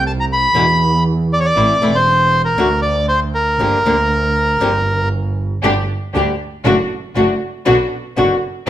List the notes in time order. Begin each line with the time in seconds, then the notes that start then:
Already playing: C2
0.07 A5
0.20 A#5
0.33 B5
0.54 E2 B2 D3 G#3 B3 E4
1.33 D5
1.40 C#5
1.45 D5
1.55 A1 E3 A3 C4 E4
1.82 E1 E3 A3 C4 E4
1.95 C5
2.45 A#4
2.58 D2 D3 A3 D4 F#4
2.82 D5
3.08 C5
3.35 A#4
3.59 G1 D3 F3 A#3 D4 G4
3.85 D2 D3 F3 A#3 D4 G4
4.60 G1 D3 F3 A#3 D4 G4
5.63 G1 D3 G3 A3 D4 G4
6.14 D2 D3 G3 A3 D4 G4
6.64 F#1 D3 A3 D4 F#4
7.15 F#1 D3 A3 D4 F#4
7.65 B1 B2 D3 B3 D4 F#4
8.16 F#1 B2 D3 B3 D4 F#4